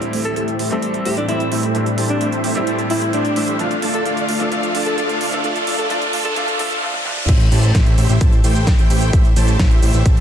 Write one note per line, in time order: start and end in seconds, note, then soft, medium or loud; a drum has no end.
0.00 0.68 A2 medium
0.00 3.56 A2 medium
0.00 3.56 E3 medium
0.00 0.68 G3 medium
0.00 3.56 G3 medium
0.00 0.68 A3 medium
0.00 0.68 C4 medium
0.00 3.56 C4 medium
0.00 0.69 E4 loud
0.00 closed hi-hat soft
0.00 riser medium
0.13 0.34 A3 medium
0.13 0.34 E4 medium
0.13 0.34 G4 medium
0.13 0.34 C5 medium
0.13 0.34 A5 medium
0.13 open hi-hat loud
0.25 0.32 A4 medium
0.25 closed hi-hat medium
0.36 0.57 A3 medium
0.36 0.57 E4 medium
0.36 0.57 G4 medium
0.36 0.44 A4 medium
0.36 0.57 C5 medium
0.36 0.57 E5 medium
0.36 closed hi-hat medium
0.48 closed hi-hat soft
0.59 0.69 A3 medium
0.59 0.69 E4 medium
0.59 0.69 G4 medium
0.59 0.69 C5 medium
0.59 0.69 E5 medium
0.59 open hi-hat loud
0.70 1.25 A2 loud
0.70 1.26 G3 medium
0.70 1.26 A3 medium
0.70 0.80 A3 medium
0.70 1.26 C4 medium
0.70 0.80 E4 medium
0.70 0.80 G4 medium
0.70 1.26 A4 loud
0.70 0.80 C5 medium
0.70 0.80 E5 medium
0.70 closed hi-hat medium
0.82 0.96 A3 medium
0.82 0.96 E4 medium
0.82 0.96 G4 medium
0.82 0.96 C5 medium
0.82 0.96 A5 medium
0.82 closed hi-hat medium
0.94 closed hi-hat soft
1.06 1.19 A3 loud
1.06 1.19 E4 loud
1.06 1.15 G4 medium
1.06 1.19 G4 medium
1.06 1.19 C5 medium
1.06 1.19 E5 loud
1.06 open hi-hat loud
1.17 1.26 D4 medium
1.17 closed hi-hat medium
1.28 1.72 A2 medium
1.28 1.72 G3 medium
1.28 1.42 A3 medium
1.28 1.72 A3 medium
1.28 1.72 C4 medium
1.28 1.49 E4 medium
1.28 1.42 E4 medium
1.28 1.72 E4 medium
1.28 1.42 G4 medium
1.28 1.42 C5 medium
1.28 1.42 D5 medium
1.28 closed hi-hat medium
1.40 closed hi-hat soft
1.52 1.72 A3 loud
1.52 1.72 E4 medium
1.52 1.72 G4 loud
1.52 1.72 C5 loud
1.52 1.72 E5 loud
1.52 open hi-hat loud
1.63 closed hi-hat medium
1.74 2.52 A2 medium
1.74 2.52 G3 medium
1.74 2.53 A3 medium
1.74 1.88 A3 loud
1.74 2.53 C4 medium
1.74 2.53 D4 medium
1.74 1.88 E4 medium
1.74 1.88 G4 medium
1.74 1.88 C5 medium
1.74 1.88 E5 loud
1.74 closed hi-hat soft
1.86 closed hi-hat soft
1.98 2.18 A3 medium
1.98 2.18 E4 medium
1.98 2.18 G4 medium
1.98 2.18 C5 medium
1.98 2.18 A5 loud
1.98 open hi-hat loud
2.09 2.29 D4 medium
2.09 closed hi-hat medium
2.21 2.41 A3 medium
2.21 2.41 E4 medium
2.21 2.41 G4 medium
2.21 2.41 C5 medium
2.21 2.41 E5 medium
2.21 closed hi-hat medium
2.32 closed hi-hat soft
2.44 2.54 A3 medium
2.44 2.54 E4 medium
2.44 2.54 G4 medium
2.44 2.54 C5 medium
2.44 2.54 E5 medium
2.44 open hi-hat loud
2.54 3.56 A2 loud
2.54 3.56 G3 medium
2.54 2.64 A3 medium
2.54 3.57 A3 medium
2.54 3.57 C4 medium
2.54 2.64 E4 medium
2.54 3.57 E4 loud
2.54 2.64 G4 medium
2.54 2.64 C5 medium
2.54 2.64 E5 medium
2.54 closed hi-hat medium
2.67 2.80 A3 medium
2.67 2.80 E4 medium
2.67 2.80 G4 medium
2.67 2.80 C5 medium
2.67 2.80 A5 medium
2.67 closed hi-hat medium
2.79 closed hi-hat soft
2.90 3.03 A3 loud
2.90 3.03 E4 loud
2.90 3.11 E4 loud
2.90 3.03 G4 medium
2.90 3.03 C5 medium
2.90 3.03 E5 loud
2.90 open hi-hat loud
3.02 closed hi-hat medium
3.13 3.26 A3 medium
3.13 3.59 D4 loud
3.13 3.26 E4 medium
3.13 3.26 G4 medium
3.13 3.26 C5 medium
3.13 3.26 D5 medium
3.13 closed hi-hat medium
3.25 closed hi-hat soft
3.36 3.57 A3 loud
3.36 3.57 E4 loud
3.36 3.57 G4 medium
3.36 3.57 C5 medium
3.36 3.57 E5 loud
3.36 open hi-hat loud
3.48 closed hi-hat medium
3.58 6.79 D2 medium
3.58 6.79 D3 medium
3.58 4.37 F3 medium
3.58 6.79 F3 medium
3.58 4.37 A3 medium
3.58 3.73 A3 loud
3.58 6.79 A3 medium
3.58 3.73 D4 medium
3.58 4.38 D4 medium
3.58 3.73 F4 medium
3.58 4.38 F4 loud
3.58 3.72 D5 medium
3.58 3.72 F5 loud
3.58 closed hi-hat soft
3.71 closed hi-hat soft
3.82 4.03 A3 medium
3.82 4.03 D4 medium
3.82 4.03 F4 medium
3.82 4.03 D5 medium
3.82 4.03 A5 medium
3.82 open hi-hat loud
3.94 4.01 A4 medium
3.94 closed hi-hat medium
4.06 4.26 A3 medium
4.06 4.26 D4 medium
4.06 4.26 F4 medium
4.06 4.13 A4 medium
4.06 4.26 D5 medium
4.06 4.26 F5 medium
4.06 closed hi-hat medium
4.17 closed hi-hat soft
4.29 4.38 A3 medium
4.29 4.38 D4 medium
4.29 4.38 F4 medium
4.29 4.38 D5 medium
4.29 4.38 F5 medium
4.29 open hi-hat loud
4.39 4.49 F3 medium
4.39 4.50 A3 medium
4.39 4.49 A3 medium
4.39 4.49 D4 medium
4.39 4.50 D4 medium
4.39 4.49 F4 medium
4.39 4.50 A4 loud
4.39 4.49 D5 medium
4.39 4.49 F5 medium
4.39 closed hi-hat medium
4.50 5.29 F3 loud
4.50 5.30 A3 medium
4.50 4.65 A3 medium
4.50 4.65 D4 medium
4.50 5.30 D4 medium
4.50 4.65 F4 medium
4.50 5.30 F4 loud
4.50 4.65 D5 medium
4.50 4.65 F5 loud
4.50 closed hi-hat medium
4.63 closed hi-hat soft
4.75 4.95 A3 medium
4.75 4.95 D4 medium
4.75 4.95 F4 medium
4.75 4.95 D5 medium
4.75 4.95 A5 loud
4.75 open hi-hat loud
4.86 4.94 A4 medium
4.86 closed hi-hat medium
4.98 5.18 A3 medium
4.98 5.18 D4 medium
4.98 5.18 F4 medium
4.98 5.05 A4 medium
4.98 5.18 D5 medium
4.98 5.18 F5 medium
4.98 closed hi-hat medium
5.09 closed hi-hat soft
5.21 5.31 A3 medium
5.21 5.31 D4 medium
5.21 5.31 F4 medium
5.21 5.31 D5 medium
5.21 5.31 F5 medium
5.21 open hi-hat loud
5.31 5.41 F3 medium
5.31 5.42 A3 medium
5.31 5.41 A3 medium
5.31 5.41 D4 medium
5.31 5.42 D4 medium
5.31 5.41 F4 medium
5.31 5.43 A4 loud
5.31 5.41 D5 medium
5.31 5.41 F5 medium
5.31 closed hi-hat medium
5.43 5.87 F3 loud
5.43 5.88 A3 medium
5.43 5.57 A3 loud
5.43 5.57 D4 medium
5.43 5.89 D4 medium
5.43 5.57 F4 medium
5.43 5.89 F4 loud
5.43 5.57 D5 medium
5.43 5.57 F5 loud
5.43 closed hi-hat soft
5.43 noise sweep medium
5.56 closed hi-hat soft
5.67 5.87 A3 medium
5.67 5.87 D4 medium
5.67 5.87 F4 medium
5.67 5.87 D5 medium
5.67 5.87 A5 loud
5.67 open hi-hat loud
5.79 5.86 A4 medium
5.79 closed hi-hat medium
5.89 6.34 F3 loud
5.89 6.34 A3 medium
5.89 6.03 A3 loud
5.89 6.03 D4 medium
5.89 6.35 D4 medium
5.89 6.03 F4 medium
5.89 6.35 F4 loud
5.89 6.03 D5 medium
5.89 6.03 F5 loud
5.89 closed hi-hat soft
6.02 closed hi-hat soft
6.13 6.34 A3 medium
6.13 6.34 D4 medium
6.13 6.34 F4 medium
6.13 6.34 D5 medium
6.13 6.34 A5 medium
6.13 open hi-hat loud
6.25 6.32 A4 loud
6.25 closed hi-hat soft
6.35 6.57 F3 loud
6.35 6.57 A3 medium
6.35 6.49 A3 loud
6.35 6.49 D4 medium
6.35 6.58 D4 medium
6.35 6.49 F4 medium
6.35 6.58 F4 loud
6.35 6.44 A4 medium
6.35 6.49 D5 medium
6.35 6.49 F5 loud
6.35 closed hi-hat medium
6.48 6.55 A4 medium
6.48 closed hi-hat soft
6.58 6.80 F3 loud
6.58 6.80 A3 medium
6.58 6.72 A3 loud
6.58 6.72 D4 loud
6.58 6.81 D4 loud
6.58 6.72 F4 loud
6.58 6.81 F4 loud
6.58 6.67 A4 loud
6.58 6.72 D5 medium
6.58 6.72 F5 loud
6.58 open hi-hat loud
6.71 6.78 A4 medium
6.71 closed hi-hat soft
6.81 7.03 F3 loud
6.81 7.04 A3 medium
6.81 7.04 D4 medium
6.81 7.04 F4 loud
6.94 high tom soft
7.04 7.26 F3 loud
7.04 7.27 A3 medium
7.04 7.27 D4 loud
7.04 7.27 F4 loud
7.04 mid tom medium
7.17 mid tom medium
7.29 7.49 A1 loud
7.29 7.42 A3 loud
7.29 7.42 E4 medium
7.29 7.42 G4 medium
7.29 7.42 C5 medium
7.29 7.42 E5 loud
7.29 kick loud
7.29 closed hi-hat loud
7.29 crash loud
7.29 shaker soft
7.40 closed hi-hat soft
7.52 7.72 A1 loud
7.52 7.72 A3 medium
7.52 7.72 E4 medium
7.52 7.72 G4 medium
7.52 7.72 C5 medium
7.52 7.72 A5 loud
7.52 open hi-hat loud
7.52 shaker medium
7.63 closed hi-hat soft
7.63 shaker soft
7.75 7.96 A1 loud
7.75 7.95 A3 medium
7.75 7.95 E4 medium
7.75 7.95 G4 medium
7.75 7.95 C5 medium
7.75 7.95 E5 medium
7.75 kick loud
7.75 snare loud
7.75 closed hi-hat loud
7.75 shaker soft
7.86 closed hi-hat soft
7.98 8.07 A1 medium
7.98 8.08 A3 medium
7.98 8.08 E4 medium
7.98 8.08 G4 medium
7.98 8.08 C5 medium
7.98 8.08 E5 medium
7.98 open hi-hat loud
7.98 shaker medium
8.09 8.19 A1 loud
8.09 8.18 A3 medium
8.09 8.18 E4 medium
8.09 8.18 G4 medium
8.09 8.18 C5 medium
8.09 8.18 E5 medium
8.09 closed hi-hat soft
8.09 shaker soft
8.21 8.42 A1 loud
8.21 8.34 A3 medium
8.21 8.34 E4 medium
8.21 8.34 G4 medium
8.21 8.34 C5 medium
8.21 8.34 A5 medium
8.21 kick loud
8.21 closed hi-hat loud
8.21 shaker soft
8.33 closed hi-hat soft
8.44 8.76 A1 loud
8.44 8.76 A3 medium
8.44 8.76 E4 medium
8.44 8.76 G4 medium
8.44 8.76 C5 medium
8.44 8.76 G5 loud
8.44 open hi-hat loud
8.44 shaker medium
8.56 closed hi-hat soft
8.56 shaker soft
8.67 kick loud
8.67 snare loud
8.67 closed hi-hat loud
8.67 shaker soft
8.79 8.88 A1 loud
8.79 8.87 A3 medium
8.79 8.87 E4 medium
8.79 8.87 G4 medium
8.79 8.87 C5 medium
8.79 8.87 G5 loud
8.79 closed hi-hat soft
8.90 9.11 A1 loud
8.90 9.11 A3 loud
8.90 9.10 E4 medium
8.90 9.10 G4 medium
8.90 9.10 C5 loud
8.90 9.10 G5 loud
8.90 open hi-hat loud
8.90 shaker medium
9.02 closed hi-hat soft
9.02 shaker soft
9.13 9.34 A1 medium
9.13 9.26 A3 loud
9.13 9.26 E4 medium
9.13 9.26 G4 medium
9.13 9.26 C5 medium
9.13 9.26 E5 loud
9.13 kick loud
9.13 closed hi-hat medium
9.13 shaker soft
9.25 closed hi-hat soft
9.36 9.57 A1 loud
9.36 9.57 A3 medium
9.36 9.57 E4 medium
9.36 9.57 G4 medium
9.36 9.57 C5 medium
9.36 9.57 A5 medium
9.36 open hi-hat loud
9.36 shaker medium
9.48 closed hi-hat soft
9.48 shaker soft
9.59 9.80 A1 loud
9.59 9.80 A3 medium
9.59 9.80 E4 medium
9.59 9.80 G4 medium
9.59 9.80 C5 medium
9.59 9.80 E5 medium
9.59 kick loud
9.59 snare loud
9.59 closed hi-hat medium
9.59 shaker soft
9.71 closed hi-hat soft
9.82 9.92 A1 medium
9.82 9.92 A3 medium
9.82 9.92 E4 medium
9.82 9.92 G4 medium
9.82 9.92 C5 medium
9.82 9.92 E5 medium
9.82 open hi-hat loud
9.82 shaker medium
9.94 10.03 A1 loud
9.94 10.03 A3 medium
9.94 10.03 E4 medium
9.94 10.03 G4 medium
9.94 10.03 C5 medium
9.94 10.03 E5 loud
9.94 closed hi-hat soft
9.94 shaker soft
10.06 10.20 A1 loud
10.06 10.19 A3 medium
10.06 10.19 E4 medium
10.06 10.19 G4 medium
10.06 10.19 C5 medium
10.06 10.19 A5 medium
10.06 kick loud
10.06 closed hi-hat loud
10.06 shaker soft
10.17 closed hi-hat soft